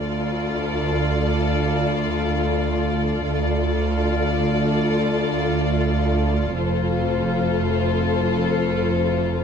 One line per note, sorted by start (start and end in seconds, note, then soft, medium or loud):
0.00 3.21 D2 soft
0.00 3.22 A3 soft
0.00 3.22 F4 soft
0.00 3.21 A4 soft
0.00 3.21 D5 soft
3.23 6.52 D2 soft
3.23 6.38 A3 soft
3.23 6.38 F4 soft
3.23 6.52 F4 soft
3.23 6.52 A4 soft
3.23 6.52 D5 soft
6.55 9.44 F1 soft
6.55 9.44 F2 soft
6.55 9.44 A3 soft
6.55 9.44 F4 soft
6.55 9.44 A4 soft
6.55 9.44 C5 soft